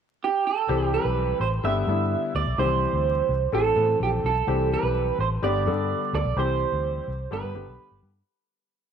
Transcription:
0.24 G4
0.47 A4
0.68 C2 E3 G3 C4 G4
0.94 B4
1.05 B1
1.40 A1 C5
1.63 G1 D3 G3 B3 G4 E5
1.87 G2 D3 G3 B3 E4
2.35 D2 D5
2.46 B1
2.58 C2 D#3 G3 C4 G4 C5
2.64 E3
2.93 D2
3.29 C2
3.52 A1 E3 A3 C4 A4
3.76 A2 E3 A3 B3 A4
3.82 C4
4.00 A#1 G4
4.24 B1 A4
4.47 C2 E3 G3 C4 G4
4.74 B4
4.83 B1
5.18 A1 C5
5.42 G1 D3 G3 B3 G4 D5
5.66 G2 D3 G3 B3 A4
6.13 D2 D5
6.25 B1
6.36 C2 E3 G3 C4 G4 C5
6.72 D2
7.08 C2
7.31 G1 D3 G3 B3 G4 B4
7.43 G2
7.54 G1 D3 G3 B3 G4
7.67 B1
7.91 G1
8.03 G2

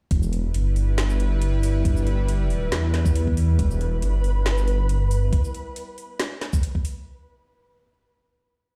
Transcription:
0.11 E1 G3 E4 B4, kick, closed hi-hat
0.23 shaker
0.33 closed hi-hat
0.54 G1, closed hi-hat
0.76 open hi-hat
0.98 snare, closed hi-hat
1.10 shaker
1.20 closed hi-hat
1.42 closed hi-hat
1.63 open hi-hat, shaker
1.85 G1, kick, closed hi-hat
1.97 shaker
2.07 closed hi-hat
2.28 closed hi-hat
2.50 open hi-hat
2.72 E2, snare, closed hi-hat
2.94 snare, closed hi-hat
3.06 kick, shaker
3.16 closed hi-hat
3.27 kick
3.37 open hi-hat
3.59 E1 B4, kick, closed hi-hat
3.71 shaker
3.81 closed hi-hat
4.02 G1, closed hi-hat
4.24 open hi-hat
4.46 snare, closed hi-hat
4.58 shaker
4.68 closed hi-hat
4.89 closed hi-hat
5.11 open hi-hat, shaker
5.33 kick, closed hi-hat
5.44 shaker
5.54 closed hi-hat
5.76 closed hi-hat
5.98 open hi-hat
6.20 snare, closed hi-hat
6.41 snare, closed hi-hat
6.53 kick, shaker
6.63 closed hi-hat
6.75 kick
6.85 open hi-hat

